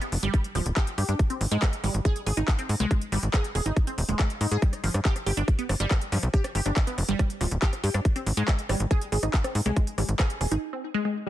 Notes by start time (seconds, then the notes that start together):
0.02 B3, closed hi-hat
0.12 F1, open hi-hat
0.23 G1 G3, closed hi-hat
0.34 G3, kick, closed hi-hat
0.44 closed hi-hat
0.55 D1 F3, open hi-hat
0.66 D1, closed hi-hat
0.77 G4, kick, clap, closed hi-hat
0.87 closed hi-hat
0.98 G2 G4, open hi-hat
1.09 G2 D4, closed hi-hat
1.19 kick, closed hi-hat
1.30 C4, closed hi-hat
1.41 G#1, open hi-hat
1.51 G#2 G#3, closed hi-hat
1.62 G#3, kick, clap, closed hi-hat
1.73 closed hi-hat
1.84 G#1 G3, open hi-hat
1.94 G#1, closed hi-hat
2.05 G#4, kick, closed hi-hat
2.16 closed hi-hat
2.27 G#1 G#4, open hi-hat
2.37 G#1 D#4, closed hi-hat
2.48 kick, clap, closed hi-hat
2.59 C4, closed hi-hat
2.69 G#2, open hi-hat
2.80 C2 G#3, closed hi-hat
2.91 G#3, kick, closed hi-hat
3.02 closed hi-hat
3.12 G#1 G3, open hi-hat
3.23 G#1, closed hi-hat
3.34 G#4, kick, clap, closed hi-hat
3.44 closed hi-hat
3.55 D#1 G#4, open hi-hat
3.66 G#1 D#4, closed hi-hat
3.77 kick, closed hi-hat
3.87 C4, closed hi-hat
3.98 D#1, open hi-hat
4.09 D#1 G#3, closed hi-hat
4.19 G#3, kick, clap, closed hi-hat
4.30 closed hi-hat
4.41 G#2 D#4, open hi-hat
4.51 G#2 G#4, closed hi-hat
4.62 G3, kick, closed hi-hat
4.73 cross-stick, closed hi-hat
4.84 G1 F3, open hi-hat
4.94 G2, cross-stick, closed hi-hat
5.05 G4, kick, clap, closed hi-hat
5.16 cross-stick, closed hi-hat
5.26 G1 G4, open hi-hat
5.37 G1 D4, closed hi-hat
5.48 kick, cross-stick, closed hi-hat
5.59 B3, closed hi-hat
5.69 G1, cross-stick, open hi-hat
5.80 G1 G3, closed hi-hat
5.91 G3, kick, cross-stick, clap, closed hi-hat
6.01 closed hi-hat
6.12 G2 F3, open hi-hat
6.23 B1, cross-stick, closed hi-hat
6.34 G4, kick, closed hi-hat
6.44 cross-stick, closed hi-hat
6.55 G1 G4, open hi-hat
6.66 G1 D4, cross-stick, closed hi-hat
6.76 kick, clap, closed hi-hat
6.87 B3, closed hi-hat
6.98 F1, cross-stick, open hi-hat
7.09 G1 G3, closed hi-hat
7.19 G3, kick, cross-stick, closed hi-hat
7.30 closed hi-hat
7.41 D1 F3, cross-stick, open hi-hat
7.51 D1, closed hi-hat
7.62 G4, kick, clap, closed hi-hat
7.73 cross-stick, closed hi-hat
7.84 G2 G4, open hi-hat
7.94 G2 D4, cross-stick, closed hi-hat
8.05 kick, closed hi-hat
8.16 C4, cross-stick, closed hi-hat
8.26 G#1, open hi-hat
8.37 G#2 G#3, closed hi-hat
8.48 G#3, kick, cross-stick, clap, closed hi-hat
8.59 closed hi-hat
8.69 G#1 G3, cross-stick, open hi-hat
8.80 G#1, closed hi-hat
8.91 G#4, kick, cross-stick, closed hi-hat
9.02 closed hi-hat
9.12 G#1 G#4, open hi-hat
9.23 G#1 D#4, cross-stick, closed hi-hat
9.34 kick, clap, closed hi-hat
9.44 C4, cross-stick, closed hi-hat
9.55 G#2, open hi-hat
9.66 C2 G#3, cross-stick, closed hi-hat
9.76 G#3, kick, closed hi-hat
9.87 closed hi-hat
9.98 G#1 G3, cross-stick, open hi-hat
10.09 G#1, closed hi-hat
10.19 G#4, kick, cross-stick, clap, closed hi-hat
10.30 closed hi-hat
10.41 D#1 G#4, cross-stick, open hi-hat
10.51 G#1 D#4, closed hi-hat
10.73 C4
10.94 G#3
11.05 G#3